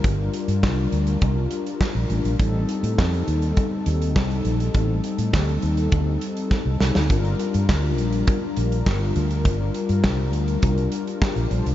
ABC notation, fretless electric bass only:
X:1
M:4/4
L:1/16
Q:1/4=102
K:Gm
V:1 name="Fretless electric bass" clef=bass
G,,,2 z G,, C,,2 D,,2 C,,2 z3 B,,, A,,, B,,, | A,,,2 z A,, F,,2 E,,2 z2 E,,2 C,,2 B,,,2 | A,,,2 z A,, D,,2 E,,2 D,,2 z3 C,, C,, D,, | G,,,2 z G,, D,,2 B,,,2 z2 B,,,2 G,,,2 D,,2 |
G,,,2 z G,, C,,2 D,,2 C,,2 z3 B,,, B,,, C,, |]